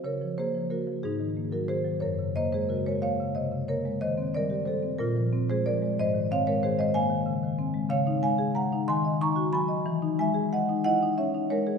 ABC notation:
X:1
M:6/8
L:1/16
Q:3/8=61
K:Db
V:1 name="Marimba"
[Bd]2 [Ac]2 [GB]2 [EA]3 [GB] [Ac]2 | [Bd]2 [ce] [Ac] [GB] [Bd] [df]2 [ce]2 [Bd]2 | [ce]2 [B=d]2 [=Ac]2 [FB]3 [_Ac] [Bd]2 | [ce]2 [df] [Bd] [Ac] [ce] [fa]2 z4 |
[df]2 [fa]2 [gb]2 [ac']2 [bd']2 [a_c']2- | [a_c']2 [=e^g]2 [^d_g]2 [dg]2 [_de]2 [Bd]2 |]
V:2 name="Marimba" clef=bass
D, F, B, F, B, F, A,, E, B, G, E, G, | G,, D, B, A, D, A, B, D, C, D, B, A, | E, C =G, =G G, C B,, F, C A, F, A, | A,, E, C A, E, A, B, E, D, E, C A, |
D, E A, A A, E E, e E G G, e | =E, ^D ^G, ^G G, D =E D _D ^D G, G |]